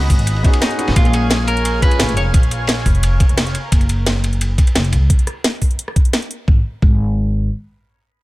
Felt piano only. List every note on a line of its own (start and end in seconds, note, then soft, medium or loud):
0.00 0.43 B3 medium
0.00 0.44 C#4 medium
0.00 0.45 D#4 medium
0.00 0.45 F#4 medium
0.00 0.46 G#4 medium
0.43 0.59 B3 medium
0.43 0.59 C#4 medium
0.43 0.60 D#4 medium
0.43 0.60 F#4 medium
0.43 0.61 G#4 loud
0.60 0.76 B3 medium
0.60 0.77 C#4 medium
0.60 0.77 D#4 medium
0.60 0.77 F#4 medium
0.60 0.78 G#4 loud
0.77 0.93 B3 medium
0.77 0.94 C#4 medium
0.77 0.94 D#4 medium
0.77 0.95 F#4 medium
0.77 0.95 G#4 loud
0.93 1.77 G#3 medium
0.93 1.80 A#3 medium
0.93 1.80 C#4 medium
0.98 1.81 F4 medium
0.98 1.82 G#4 medium
1.79 2.31 A#2 medium
1.79 2.30 G#3 medium
1.79 2.32 C#4 medium
1.84 2.33 F4 medium
1.84 2.34 G#4 medium